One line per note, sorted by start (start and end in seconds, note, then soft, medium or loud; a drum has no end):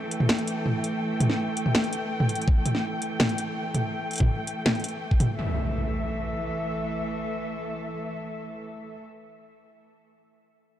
0.00 5.35 E3 medium
0.00 5.35 A3 medium
0.00 5.35 A4 medium
0.00 5.37 G5 medium
0.11 closed hi-hat medium
0.20 mid tom medium
0.29 snare loud
0.39 closed hi-hat soft
0.47 closed hi-hat medium
0.66 mid tom soft
0.84 closed hi-hat medium
1.20 closed hi-hat medium
1.20 mid tom medium
1.30 snare soft
1.57 closed hi-hat medium
1.66 mid tom soft
1.75 snare loud
1.84 closed hi-hat soft
1.93 closed hi-hat medium
2.20 mid tom medium
2.29 closed hi-hat medium
2.35 closed hi-hat soft
2.42 closed hi-hat soft
2.48 kick loud
2.66 closed hi-hat medium
2.66 mid tom medium
2.75 snare soft
3.02 closed hi-hat medium
3.20 snare loud
3.20 mid tom medium
3.29 closed hi-hat soft
3.38 closed hi-hat medium
3.75 closed hi-hat medium
3.75 mid tom soft
4.11 closed hi-hat soft
4.13 closed hi-hat soft
4.16 closed hi-hat medium
4.18 kick medium
4.18 closed hi-hat medium
4.18 mid tom medium
4.47 closed hi-hat medium
4.66 snare loud
4.66 mid tom medium
4.75 closed hi-hat soft
4.80 closed hi-hat soft
4.84 closed hi-hat medium
4.88 closed hi-hat soft
5.11 kick medium
5.20 closed hi-hat medium
5.20 mid tom medium
5.38 8.98 E3 medium
5.38 8.98 A3 medium
5.38 8.99 A4 medium
5.38 8.99 E5 medium
5.38 impact medium